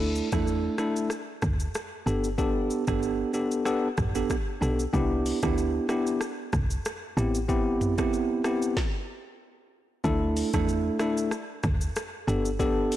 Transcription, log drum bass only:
0.00 0.22 D2 loud
0.33 0.69 E2 medium
1.43 1.68 D2 medium
2.06 2.71 G1 loud
2.88 3.25 G1 loud
3.98 4.23 A1 medium
4.62 4.87 B1 medium
4.94 5.33 C2 loud
5.43 5.80 D2 medium
6.53 6.79 C2 loud
7.17 8.00 A1 loud
7.98 8.35 G1 medium
10.04 10.44 D2 loud
10.54 10.91 E2 medium
11.64 11.89 D2 medium
12.28 12.92 G1 loud

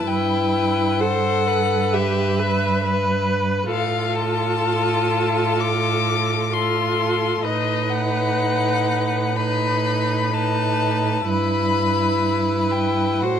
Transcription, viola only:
0.08 1.02 E4 soft
1.00 1.95 A4 soft
1.93 2.41 G4 soft
2.40 2.84 B4 soft
2.84 3.70 B4 soft
3.71 6.49 F4 soft
6.54 7.46 F4 soft
7.44 9.37 D#4 soft
9.37 10.33 D#4 soft
10.34 11.27 D#4 soft
11.29 13.24 E4 soft
13.22 13.40 F#4 soft

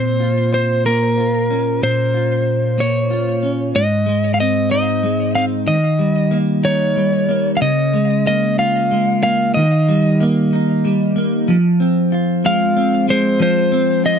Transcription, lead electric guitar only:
0.00 0.53 C5 medium
0.54 0.86 C5 medium
0.86 1.83 A#4 medium
1.83 3.40 C5 medium
2.80 3.75 C#5 medium
3.76 4.34 D#5 medium
4.34 4.40 F5 medium
4.40 4.70 D#5 medium
4.71 5.32 D#5 medium
5.35 5.44 F5 medium
5.68 6.37 D#5 medium
6.65 7.51 C#5 medium
7.57 7.61 F5 medium
7.62 8.26 D#5 medium
8.27 8.59 D#5 medium
8.59 9.22 F5 medium
9.23 9.53 F5 medium
9.54 10.23 D#5 medium
12.46 13.06 F5 loud
13.10 13.40 C5 medium
13.42 14.02 C5 medium
14.06 14.19 D#5 medium

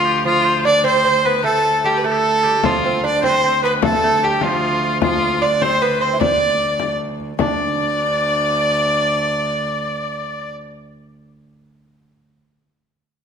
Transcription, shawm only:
0.05 0.24 G4 medium
0.25 0.47 F4 medium
0.45 0.67 C5 medium
0.66 0.85 D5 medium
0.85 1.26 C5 medium
1.24 1.47 B4 medium
1.45 1.64 A4 medium
1.65 1.83 A4 medium
1.85 2.06 G4 medium
2.04 2.13 A4 medium
2.11 2.19 G4 medium
2.18 2.45 A4 medium
2.43 2.62 G4 medium
2.63 2.94 F4 medium
3.21 3.30 C5 medium
3.29 3.37 B4 medium
3.36 3.62 C5 medium
3.62 3.84 B4 medium
3.83 4.22 A4 medium
4.22 4.44 G4 medium
4.42 4.50 F4 medium
4.49 4.56 G4 medium
4.54 5.00 F4 medium
5.00 5.38 F4 medium
5.41 5.50 D5 medium
5.61 5.98 C5 medium
6.00 6.09 C5 medium
6.20 6.96 D5 medium
7.40 10.53 D5 loud

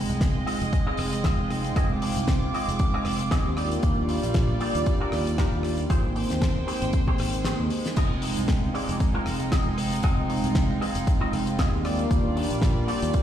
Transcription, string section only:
0.00 3.53 G#3 medium
0.00 5.86 F4 medium
0.00 1.74 D#5 medium
1.76 3.55 D6 medium
3.57 5.88 G3 medium
3.57 5.88 D5 medium
5.91 11.81 G#3 medium
5.91 7.95 C5 medium
5.91 7.95 G5 medium
7.97 11.81 D#4 medium
7.97 13.23 F4 medium
11.85 13.23 G3 medium
11.85 13.23 D5 medium

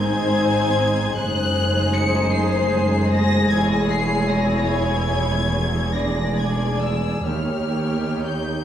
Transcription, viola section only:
0.00 1.16 C4 medium
0.00 1.14 D#4 medium
1.17 5.90 G#3 medium
1.17 3.47 D#4 medium
3.51 5.90 E4 medium
5.94 7.21 G#3 medium
5.94 7.21 D4 medium
7.25 8.64 A#3 medium
7.25 8.64 D#4 medium

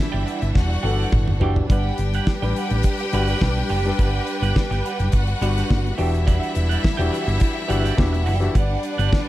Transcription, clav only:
0.00 0.25 E3 medium
0.00 0.26 D4 medium
0.00 0.26 F#4 medium
0.00 0.26 G4 loud
0.84 1.34 E3 medium
0.84 1.34 D4 medium
0.84 1.34 F#4 medium
0.84 1.35 A4 medium
1.40 1.66 E3 medium
1.40 1.66 D4 medium
1.40 1.66 F#4 medium
1.40 1.66 G4 medium
1.69 2.32 G3 medium
1.69 2.32 D4 medium
1.69 2.32 G4 medium
1.69 2.32 B4 medium
2.42 3.04 G3 medium
2.42 3.04 D4 medium
2.42 3.04 G4 medium
2.42 3.04 B4 loud
3.13 3.38 G3 medium
3.13 3.38 D4 medium
3.13 3.38 F#4 medium
3.13 3.38 B4 medium
3.41 3.79 G3 medium
3.41 3.79 D4 medium
3.41 3.80 G4 medium
3.41 3.80 B4 loud
3.86 4.83 G3 medium
3.86 4.84 D4 medium
3.86 4.84 G4 medium
3.86 4.84 B4 loud
5.41 5.91 G3 medium
5.41 5.91 D4 medium
5.41 5.92 F#4 medium
5.41 5.92 D5 medium
5.98 6.85 E3 medium
5.98 6.85 D4 medium
5.98 6.85 F#4 medium
5.98 6.86 G4 medium
6.98 7.60 E3 loud
6.98 7.61 D4 medium
6.98 7.61 F#4 medium
6.98 7.61 G4 loud
7.68 7.94 E3 medium
7.68 7.94 D4 medium
7.68 7.94 F#4 medium
7.68 7.95 G4 medium
7.97 8.36 E3 loud
7.97 8.36 D4 medium
7.97 8.36 F#4 medium
7.97 8.36 G4 loud
8.40 8.55 E3 medium
8.40 8.55 D4 medium
8.40 8.55 F#4 medium
8.40 8.55 G4 loud

